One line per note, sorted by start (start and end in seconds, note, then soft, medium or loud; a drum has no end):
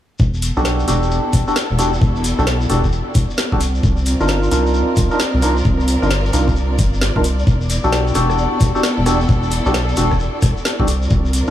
0.19 0.51 E1 loud
0.19 3.61 B3 medium
0.19 kick loud
0.19 shekere soft
0.34 3.61 A4 medium
0.34 shekere soft
0.42 open hi-hat loud
0.42 shekere medium
0.51 3.61 E4 medium
0.57 0.85 B1 loud
0.57 0.86 D4 medium
0.57 0.86 F#4 medium
0.57 0.86 G4 medium
0.57 0.86 A4 loud
0.57 shekere soft
0.65 snare loud
0.65 shekere soft
0.79 shekere soft
0.88 1.19 E1 medium
0.88 1.44 D4 medium
0.88 1.44 F#4 medium
0.88 1.44 G4 medium
0.88 1.44 A4 loud
0.88 open hi-hat medium
0.88 shekere medium
1.03 shekere soft
1.08 11.50 D5 medium
1.08 shekere soft
1.33 1.44 E1 loud
1.33 kick loud
1.33 open hi-hat loud
1.33 shekere medium
1.48 1.55 D4 medium
1.48 1.55 F#4 medium
1.48 1.55 G4 medium
1.48 1.55 A4 loud
1.48 shekere soft
1.56 snare loud
1.56 shekere medium
1.70 1.98 E1 medium
1.79 1.92 D4 medium
1.79 1.92 F#4 medium
1.79 1.92 G4 medium
1.79 1.92 A4 medium
1.79 open hi-hat medium
1.79 shekere medium
1.93 shekere soft
2.01 2.33 E1 loud
2.01 kick loud
2.01 shekere medium
2.16 shekere soft
2.24 open hi-hat loud
2.24 shekere medium
2.39 2.66 B1 loud
2.39 2.46 D4 medium
2.39 2.46 F#4 medium
2.39 2.46 G4 medium
2.39 2.46 A4 loud
2.39 shekere soft
2.47 snare loud
2.47 shekere soft
2.61 shekere soft
2.70 3.01 E1 medium
2.70 2.88 D4 medium
2.70 2.88 F#4 medium
2.70 2.88 G4 medium
2.70 2.88 A4 medium
2.70 open hi-hat medium
2.70 shekere medium
2.84 kick medium
2.84 shekere soft
2.92 shekere soft
3.15 3.26 E1 loud
3.15 kick loud
3.15 open hi-hat loud
3.15 shekere medium
3.30 shekere soft
3.37 snare loud
3.37 shekere medium
3.52 3.80 C2 medium
3.52 3.60 D4 medium
3.52 3.60 F#4 medium
3.52 3.60 G4 medium
3.52 3.60 A4 loud
3.52 kick medium
3.60 7.47 C4 medium
3.60 open hi-hat medium
3.60 shekere medium
3.67 7.47 F4 medium
3.75 shekere soft
3.83 4.15 C2 loud
3.83 kick loud
3.83 shekere medium
3.97 shekere soft
4.04 7.47 A#4 medium
4.04 open hi-hat loud
4.04 shekere medium
4.20 4.48 G1 loud
4.20 4.50 D4 medium
4.20 4.50 D#4 medium
4.20 4.50 F4 medium
4.20 4.50 A#4 loud
4.20 shekere soft
4.28 snare loud
4.28 shekere medium
4.43 shekere soft
4.51 4.83 C2 medium
4.51 5.08 D4 loud
4.51 5.08 D#4 medium
4.51 5.08 F4 medium
4.51 5.08 A#4 loud
4.51 open hi-hat medium
4.51 shekere medium
4.67 shekere soft
4.74 shekere medium
4.96 5.08 C2 loud
4.96 kick loud
4.96 open hi-hat loud
4.96 shekere loud
5.11 5.19 D4 medium
5.11 5.19 D#4 medium
5.11 5.19 F4 medium
5.11 5.19 A#4 loud
5.11 shekere soft
5.19 snare loud
5.19 shekere medium
5.34 5.62 C2 medium
5.42 5.55 D4 medium
5.42 5.55 D#4 medium
5.42 5.55 F4 medium
5.42 5.55 A#4 medium
5.42 open hi-hat medium
5.42 shekere loud
5.57 shekere soft
5.64 5.97 C2 loud
5.64 kick loud
5.64 shekere medium
5.80 shekere soft
5.88 open hi-hat loud
5.88 shekere medium
6.02 6.30 G1 loud
6.02 6.10 D4 medium
6.02 6.10 D#4 medium
6.02 6.10 F4 medium
6.02 6.10 A#4 medium
6.02 shekere soft
6.10 snare loud
6.10 shekere medium
6.26 shekere soft
6.33 6.80 C2 medium
6.33 6.51 D4 medium
6.33 6.51 D#4 medium
6.33 6.51 F4 medium
6.33 6.51 A#4 medium
6.33 open hi-hat medium
6.33 shekere medium
6.48 kick medium
6.48 shekere soft
6.56 shekere medium
6.79 7.10 G1 medium
6.79 kick loud
6.79 open hi-hat loud
6.79 shekere medium
6.94 shekere soft
7.01 snare loud
7.01 shekere medium
7.16 7.44 C2 medium
7.16 7.23 D4 medium
7.16 7.23 D#4 medium
7.16 7.23 F4 medium
7.16 7.23 A#4 loud
7.16 kick medium
7.24 open hi-hat medium
7.24 shekere medium
7.39 shekere soft
7.47 7.79 E1 loud
7.47 10.88 B3 medium
7.47 kick loud
7.47 shekere medium
7.52 10.88 E4 medium
7.61 shekere soft
7.70 open hi-hat medium
7.70 shekere loud
7.84 8.12 B1 loud
7.84 8.13 D4 medium
7.84 8.13 F#4 medium
7.84 8.13 G4 medium
7.84 8.13 A4 loud
7.84 shekere soft
7.92 10.88 A4 loud
7.92 snare loud
7.92 shekere soft
8.07 shekere soft
8.15 8.47 E1 medium
8.15 8.72 D4 loud
8.15 8.72 F#4 medium
8.15 8.72 G4 medium
8.15 8.72 A4 loud
8.15 cross-stick medium
8.15 open hi-hat medium
8.15 shekere medium
8.30 cross-stick medium
8.30 shekere soft
8.38 shekere medium
8.60 8.72 E1 loud
8.60 kick loud
8.60 open hi-hat loud
8.60 shekere medium
8.75 8.82 D4 medium
8.75 8.83 F#4 medium
8.75 8.82 G4 medium
8.75 8.83 A4 loud
8.75 shekere soft
8.83 snare loud
8.83 shekere medium
8.98 9.26 E1 medium
9.06 9.19 D4 medium
9.06 9.19 F#4 medium
9.06 9.19 G4 medium
9.06 9.19 A4 medium
9.06 cross-stick medium
9.06 open hi-hat medium
9.06 shekere medium
9.21 shekere soft
9.28 9.60 E1 medium
9.28 kick loud
9.28 shekere soft
9.43 shekere soft
9.51 open hi-hat loud
9.51 shekere medium
9.66 9.94 B1 loud
9.66 9.73 D4 medium
9.66 9.73 F#4 medium
9.66 9.73 G4 medium
9.66 9.73 A4 medium
9.66 shekere soft
9.74 snare loud
9.74 shekere medium
9.89 shekere soft
9.96 10.29 E1 medium
9.96 10.15 D4 medium
9.96 10.15 F#4 medium
9.96 10.15 G4 medium
9.96 10.15 A4 medium
9.96 open hi-hat medium
9.96 shekere medium
10.11 kick medium
10.11 cross-stick medium
10.11 shekere soft
10.20 shekere soft
10.42 10.53 E1 loud
10.42 kick loud
10.42 cross-stick medium
10.42 open hi-hat loud
10.42 shekere medium
10.57 shekere soft
10.65 snare loud
10.65 shekere medium
10.80 11.07 C2 medium
10.80 10.87 D4 medium
10.80 10.87 F#4 medium
10.80 10.87 G4 medium
10.80 10.87 A4 loud
10.80 kick medium
10.88 11.50 C4 medium
10.88 open hi-hat medium
10.88 shekere medium
10.97 11.50 F4 medium
10.97 11.50 A#4 medium
11.02 shekere soft
11.10 11.42 C2 loud
11.10 kick loud
11.10 shekere soft
11.25 shekere soft
11.33 open hi-hat loud
11.33 shekere medium